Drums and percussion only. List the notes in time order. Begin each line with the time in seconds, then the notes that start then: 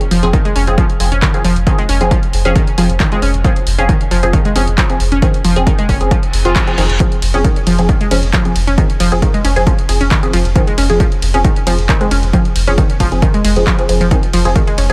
0.01 closed hi-hat
0.11 open hi-hat
0.23 closed hi-hat
0.33 kick, closed hi-hat
0.45 closed hi-hat
0.56 open hi-hat
0.67 closed hi-hat
0.78 kick, closed hi-hat
0.90 closed hi-hat
1.00 open hi-hat
1.12 closed hi-hat
1.22 kick, clap, closed hi-hat
1.34 closed hi-hat
1.44 open hi-hat
1.56 closed hi-hat
1.67 kick, closed hi-hat
1.78 closed hi-hat
1.89 open hi-hat
2.01 closed hi-hat
2.11 kick, closed hi-hat
2.23 closed hi-hat
2.33 open hi-hat
2.45 closed hi-hat
2.56 kick, closed hi-hat
2.67 closed hi-hat
2.78 open hi-hat
2.90 closed hi-hat
3.00 kick, clap, closed hi-hat
3.12 closed hi-hat
3.22 open hi-hat
3.34 closed hi-hat
3.44 kick, closed hi-hat
3.56 closed hi-hat
3.67 open hi-hat
3.79 closed hi-hat
3.89 kick, closed hi-hat
4.01 closed hi-hat
4.11 open hi-hat
4.23 closed hi-hat
4.33 kick, closed hi-hat
4.45 closed hi-hat
4.56 open hi-hat
4.67 closed hi-hat
4.78 kick, clap, closed hi-hat
4.90 closed hi-hat
5.00 open hi-hat
5.12 closed hi-hat
5.22 kick, closed hi-hat
5.34 closed hi-hat
5.45 open hi-hat
5.56 closed hi-hat
5.67 kick, closed hi-hat
5.78 closed hi-hat
5.89 kick, open hi-hat
6.01 closed hi-hat
6.11 kick, closed hi-hat
6.23 closed hi-hat
6.33 open hi-hat
6.45 closed hi-hat
6.56 kick, clap, closed hi-hat
6.67 closed hi-hat
6.78 open hi-hat
6.90 closed hi-hat
7.00 kick, closed hi-hat
7.12 closed hi-hat
7.22 open hi-hat, ride
7.34 closed hi-hat
7.45 kick, closed hi-hat
7.56 closed hi-hat
7.67 open hi-hat, ride
7.78 closed hi-hat
7.89 kick, closed hi-hat
8.01 closed hi-hat
8.11 open hi-hat, ride
8.23 closed hi-hat
8.33 kick, clap, closed hi-hat
8.45 closed hi-hat
8.56 open hi-hat, ride
8.67 closed hi-hat
8.78 kick, closed hi-hat
8.90 closed hi-hat
9.00 open hi-hat, ride
9.12 closed hi-hat
9.22 kick, closed hi-hat
9.34 closed hi-hat
9.45 open hi-hat, ride
9.56 closed hi-hat
9.67 kick, closed hi-hat
9.79 closed hi-hat
9.89 open hi-hat, ride
10.01 closed hi-hat
10.11 kick, clap, closed hi-hat
10.23 closed hi-hat
10.33 open hi-hat, ride
10.45 closed hi-hat
10.56 kick, closed hi-hat
10.67 closed hi-hat
10.78 open hi-hat, ride
10.90 closed hi-hat
11.00 kick, closed hi-hat
11.12 closed hi-hat
11.22 open hi-hat, ride
11.34 closed hi-hat
11.45 kick, closed hi-hat
11.56 closed hi-hat
11.67 open hi-hat, ride
11.79 closed hi-hat
11.89 kick, clap, closed hi-hat
12.01 closed hi-hat
12.11 open hi-hat, ride
12.23 closed hi-hat
12.33 kick, closed hi-hat
12.45 closed hi-hat
12.56 open hi-hat, ride
12.67 closed hi-hat
12.78 kick, closed hi-hat
12.90 closed hi-hat
13.00 kick, open hi-hat, ride
13.12 closed hi-hat
13.22 kick, closed hi-hat
13.34 closed hi-hat
13.45 open hi-hat, ride
13.56 closed hi-hat
13.67 kick, clap, closed hi-hat
13.79 closed hi-hat
13.89 open hi-hat, ride
14.01 closed hi-hat
14.11 kick, closed hi-hat
14.23 closed hi-hat
14.33 open hi-hat, ride
14.45 closed hi-hat
14.56 kick, closed hi-hat
14.67 closed hi-hat
14.78 open hi-hat, ride
14.90 closed hi-hat